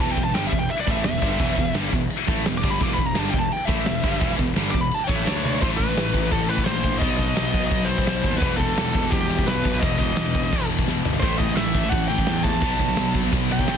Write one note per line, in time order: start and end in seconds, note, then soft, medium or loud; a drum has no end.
0.00 0.16 E1 loud
0.00 0.16 E2 loud
0.00 0.16 B2 loud
0.00 0.17 E3 loud
0.00 0.11 A5 medium
0.00 crash medium
0.12 0.23 G5 medium
0.17 0.33 E1 medium
0.17 0.31 E2 medium
0.17 0.31 B2 medium
0.17 kick medium
0.24 0.34 A5 loud
0.34 0.51 G1 medium
0.34 0.51 G2 medium
0.34 0.52 D3 medium
0.34 0.52 G3 loud
0.34 0.46 G5 loud
0.34 snare loud
0.34 crash medium
0.47 0.58 E5 medium
0.51 0.69 E1 medium
0.51 0.66 E2 medium
0.51 0.66 B2 medium
0.51 kick medium
0.59 0.70 G5 loud
0.70 0.80 E5 medium
0.70 crash medium
0.80 0.91 D5 medium
0.87 1.03 A1 medium
0.87 1.05 A2 medium
0.87 1.05 E3 loud
0.87 1.05 A3 loud
0.87 kick loud
0.91 1.04 E5 medium
1.04 1.21 E1 medium
1.04 1.19 E2 medium
1.04 1.19 B2 medium
1.04 1.73 E5 loud
1.04 snare loud
1.04 crash medium
1.22 1.38 G1 loud
1.22 1.39 G2 medium
1.22 1.39 D3 loud
1.22 1.40 G3 medium
1.22 kick loud
1.39 1.56 E1 loud
1.39 1.56 E2 loud
1.39 1.56 B2 loud
1.39 1.57 E3 loud
1.39 kick loud
1.39 crash medium
1.58 1.74 E1 medium
1.58 1.72 E2 medium
1.58 1.72 B2 medium
1.58 kick loud
1.74 1.91 G1 medium
1.74 1.91 G2 medium
1.74 1.92 D3 loud
1.74 1.92 G3 loud
1.74 snare loud
1.74 crash medium
1.92 2.09 E1 medium
1.92 2.06 E2 medium
1.92 2.07 B2 medium
1.92 kick medium
2.10 crash medium
2.28 2.44 A1 loud
2.28 2.45 A2 medium
2.28 2.45 E3 loud
2.28 2.45 A3 loud
2.28 kick loud
2.45 2.63 E1 medium
2.45 2.59 E2 medium
2.45 2.60 B2 medium
2.45 snare loud
2.45 crash medium
2.58 2.70 D6 loud
2.63 2.80 G1 loud
2.63 2.80 G2 loud
2.63 2.80 D3 loud
2.63 2.81 G3 loud
2.63 kick loud
2.70 2.82 B5 loud
2.80 2.97 E1 loud
2.80 2.96 E2 loud
2.80 2.97 B2 loud
2.80 2.98 E3 loud
2.80 2.93 D6 loud
2.80 kick loud
2.80 crash medium
2.94 3.14 E1 medium
2.94 3.12 E2 medium
2.94 3.12 B2 medium
2.94 3.06 B5 loud
2.94 kick medium
3.06 3.16 A#5 loud
3.15 3.32 G1 medium
3.15 3.32 G2 medium
3.15 3.33 D3 loud
3.15 3.33 G3 loud
3.15 3.29 A5 loud
3.15 snare loud
3.15 crash medium
3.30 3.49 E1 medium
3.30 3.47 E2 medium
3.30 3.48 B2 medium
3.30 3.39 G5 loud
3.30 kick loud
3.39 3.53 A5 loud
3.52 3.65 G5 loud
3.52 crash medium
3.65 3.85 A1 loud
3.65 3.85 A2 loud
3.65 3.85 E3 loud
3.65 3.86 A3 loud
3.65 4.32 E5 loud
3.65 kick loud
3.85 4.02 E1 medium
3.85 4.00 E2 medium
3.85 4.00 B2 medium
3.85 snare loud
3.85 crash medium
4.02 4.20 G1 loud
4.02 4.19 G2 loud
4.02 4.19 D3 medium
4.02 4.20 G3 loud
4.02 kick loud
4.19 4.38 E1 loud
4.19 4.36 E2 loud
4.19 4.37 B2 loud
4.19 4.38 E3 loud
4.19 kick loud
4.19 crash medium
4.38 4.55 E1 medium
4.38 4.52 E2 medium
4.38 4.52 B2 medium
4.38 kick medium
4.56 4.73 G1 loud
4.56 4.73 G2 loud
4.56 4.73 D3 loud
4.56 4.73 G3 loud
4.56 snare loud
4.56 crash medium
4.71 4.90 E1 medium
4.71 4.88 E2 medium
4.71 4.88 B2 medium
4.71 4.81 D6 loud
4.71 kick loud
4.81 4.94 B5 medium
4.91 5.04 A5 loud
4.91 crash medium
5.04 5.25 A2 loud
5.04 5.61 C#5 loud
5.04 5.15 G5 loud
5.09 5.25 A1 loud
5.09 5.26 E3 loud
5.09 5.25 A3 loud
5.09 kick loud
5.16 5.27 E5 loud
5.25 5.58 D2 loud
5.25 5.61 D3 medium
5.25 5.61 A3 loud
5.25 5.61 D4 loud
5.25 5.61 D5 loud
5.25 snare loud
5.25 crash medium
5.45 high tom medium
5.61 5.79 A1 medium
5.61 5.78 A2 medium
5.61 5.78 E3 loud
5.61 5.78 A3 loud
5.61 5.66 C5 loud
5.61 kick loud
5.61 crash loud
5.61 crash medium
5.77 5.95 A1 medium
5.77 5.87 A2 medium
5.77 5.87 E3 medium
5.77 6.32 B4 loud
5.77 kick medium
5.77 crash medium
5.88 5.95 A2 medium
5.88 5.95 E3 medium
5.95 6.13 A1 loud
5.95 6.12 A2 medium
5.95 6.12 E3 medium
5.95 snare loud
5.95 crash medium
6.14 6.31 A1 medium
6.14 6.22 A2 medium
6.14 6.21 E3 medium
6.14 kick medium
6.14 crash medium
6.22 6.30 A2 medium
6.22 6.30 E3 medium
6.31 6.64 A1 loud
6.31 6.47 A2 medium
6.31 6.47 E3 medium
6.31 6.49 A4 medium
6.31 kick loud
6.31 crash medium
6.49 6.56 A2 medium
6.49 6.55 E3 medium
6.49 6.64 B4 loud
6.49 crash medium
6.57 6.65 A2 medium
6.57 6.66 E3 medium
6.57 kick medium
6.64 7.01 A#1 medium
6.64 6.82 A2 medium
6.64 6.83 E3 medium
6.64 7.02 C5 loud
6.64 snare loud
6.64 crash medium
6.84 6.92 A2 medium
6.84 6.91 E3 medium
6.84 kick medium
6.84 crash medium
6.92 7.00 A2 medium
6.92 7.00 E3 medium
6.98 7.35 B1 loud
6.98 7.17 B2 loud
6.98 7.17 F#3 loud
6.98 7.18 B3 loud
6.98 7.15 D#5 loud
6.98 kick loud
6.98 crash medium
7.17 7.26 B2 medium
7.17 7.25 F#3 medium
7.17 7.66 D#5 loud
7.17 kick medium
7.17 crash medium
7.27 7.34 B2 medium
7.27 7.35 F#3 medium
7.36 7.70 B1 medium
7.36 7.52 B2 medium
7.36 7.51 F#3 medium
7.36 snare loud
7.36 crash medium
7.53 7.62 B2 medium
7.53 7.61 F#3 medium
7.53 kick medium
7.53 crash medium
7.63 7.70 B2 medium
7.63 7.71 F#3 medium
7.67 8.05 B1 loud
7.67 7.87 B2 medium
7.67 7.88 D#5 loud
7.67 kick loud
7.67 crash loud
7.72 7.87 F#3 loud
7.85 7.95 F#3 medium
7.85 8.38 C5 loud
7.89 7.95 B2 medium
7.89 crash medium
7.96 8.04 B2 medium
7.96 8.05 F#3 medium
7.96 kick medium
8.05 8.23 B1 loud
8.05 8.22 B2 medium
8.05 8.22 F#3 medium
8.05 snare loud
8.05 crash loud
8.23 8.41 D#2 loud
8.23 8.31 B2 medium
8.23 8.30 F#3 medium
8.23 kick medium
8.23 crash medium
8.32 8.39 B2 medium
8.32 8.41 F#3 medium
8.38 8.58 E1 loud
8.38 8.57 E2 medium
8.38 8.56 B2 loud
8.38 8.58 E3 loud
8.38 8.57 B4 loud
8.38 kick loud
8.43 crash loud
8.57 8.75 E1 loud
8.57 8.64 E2 medium
8.57 8.65 B2 medium
8.57 9.13 A4 loud
8.57 kick medium
8.57 crash medium
8.66 8.74 E2 medium
8.66 8.74 B2 medium
8.75 8.93 E1 loud
8.75 8.92 E2 medium
8.75 8.92 B2 loud
8.75 snare loud
8.75 crash loud
8.93 9.11 E1 medium
8.93 9.01 E2 medium
8.93 9.01 B2 medium
8.93 kick medium
8.93 crash medium
9.02 9.09 E2 medium
9.02 9.10 B2 medium
9.10 9.45 E1 loud
9.10 9.27 E2 medium
9.10 9.27 B2 medium
9.10 9.47 G4 medium
9.10 kick loud
9.10 crash medium
9.30 9.37 E2 medium
9.30 9.36 B2 medium
9.30 crash medium
9.38 9.46 E2 medium
9.38 9.46 B2 medium
9.38 kick medium
9.46 9.80 B1 medium
9.46 9.63 E2 medium
9.46 9.62 B2 medium
9.46 9.83 B4 medium
9.46 snare loud
9.46 crash medium
9.64 9.72 E2 medium
9.64 9.72 B2 medium
9.64 kick medium
9.64 crash medium
9.73 9.81 E2 medium
9.73 9.82 B2 medium
9.79 10.16 E1 loud
9.79 9.97 E2 medium
9.79 9.97 B2 medium
9.79 9.97 D#5 loud
9.79 kick loud
9.79 crash medium
9.84 11.21 E3 loud
9.98 10.08 E2 medium
9.98 10.08 B2 medium
9.98 10.65 D#5 loud
9.98 kick medium
9.98 crash medium
10.09 10.16 E2 medium
10.09 10.17 B2 medium
10.17 10.50 E1 medium
10.17 10.33 E2 medium
10.17 10.33 B2 medium
10.17 snare loud
10.17 crash medium
10.35 10.43 E2 medium
10.35 10.42 B2 medium
10.35 kick medium
10.35 crash medium
10.43 10.52 E2 medium
10.43 10.52 B2 medium
10.52 10.85 E1 loud
10.52 10.69 E2 medium
10.52 10.68 B2 medium
10.52 kick loud
10.52 crash medium
10.70 10.77 E2 medium
10.70 10.77 B2 medium
10.70 crash medium
10.78 10.87 E2 medium
10.78 10.87 B2 medium
10.78 kick medium
10.87 11.04 E1 loud
10.87 11.03 E2 medium
10.87 11.04 B2 medium
10.87 snare medium
11.04 11.21 G1 medium
11.04 11.12 E2 medium
11.04 11.12 B2 medium
11.04 floor tom medium
11.13 11.22 E2 medium
11.13 11.22 B2 medium
11.20 11.39 A1 loud
11.20 11.39 A2 medium
11.20 11.38 E3 loud
11.20 11.39 A3 loud
11.20 11.37 C5 medium
11.20 kick loud
11.20 crash medium
11.37 11.55 A1 medium
11.37 11.48 A2 medium
11.37 11.47 E3 medium
11.37 11.56 D#5 medium
11.37 kick medium
11.37 crash medium
11.48 11.56 A2 medium
11.48 11.56 E3 medium
11.56 11.73 A1 medium
11.56 11.73 A2 medium
11.56 11.73 E3 loud
11.56 11.93 E5 medium
11.56 snare loud
11.56 crash medium
11.74 11.91 A1 medium
11.74 11.83 A2 medium
11.74 11.82 E3 medium
11.74 kick medium
11.74 crash medium
11.84 11.91 A2 medium
11.84 11.92 E3 medium
11.89 12.26 A1 medium
11.89 12.08 A2 medium
11.89 12.09 E3 medium
11.89 12.08 F#5 loud
11.89 kick loud
11.89 crash medium
12.08 12.17 A2 medium
12.08 12.16 E3 medium
12.08 12.44 G5 loud
12.08 crash medium
12.18 12.27 A2 medium
12.18 12.27 E3 medium
12.18 kick medium
12.27 12.61 E2 loud
12.27 12.43 A2 medium
12.27 12.43 E3 medium
12.27 snare loud
12.27 crash medium
12.44 12.52 A2 medium
12.44 12.52 E3 medium
12.44 13.11 A5 loud
12.44 kick medium
12.44 crash medium
12.53 12.62 A2 medium
12.53 12.63 E3 medium
12.61 12.95 B1 loud
12.61 12.79 B2 medium
12.61 12.79 F#3 loud
12.61 12.80 B3 loud
12.61 kick loud
12.61 crash medium
12.79 12.88 B2 medium
12.79 12.87 F#3 medium
12.79 kick medium
12.79 crash medium
12.88 12.96 B2 medium
12.88 12.97 F#3 loud
12.96 13.30 B1 loud
12.96 13.13 B2 medium
12.96 13.13 F#3 loud
12.96 snare loud
12.96 crash medium
13.14 13.22 B2 medium
13.14 13.22 F#3 medium
13.14 kick medium
13.14 crash medium
13.23 13.31 B2 medium
13.23 13.31 F#3 medium
13.32 13.66 B1 loud
13.32 13.48 B2 medium
13.32 13.48 F#3 medium
13.32 kick loud
13.32 crash medium
13.50 13.59 B2 medium
13.50 13.59 F#3 medium
13.50 13.77 G5 loud
13.50 crash medium
13.59 13.67 B2 medium
13.59 13.67 F#3 medium
13.59 kick medium
13.67 13.77 B1 medium
13.67 13.77 B2 medium
13.67 13.77 F#3 medium
13.67 snare loud
13.67 crash medium